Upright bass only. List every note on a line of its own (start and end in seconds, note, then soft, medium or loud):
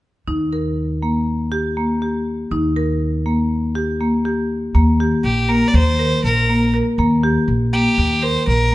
0.27 2.47 D#2 soft
2.51 4.71 D#2 medium
4.75 5.12 D#2 medium
5.24 5.62 A#1 medium
5.74 6.11 D#2 medium
6.24 6.80 A#1 medium
6.98 7.36 D#2 medium
7.48 7.85 A#1 medium
7.98 8.35 D#2 medium
8.47 8.75 A#1 medium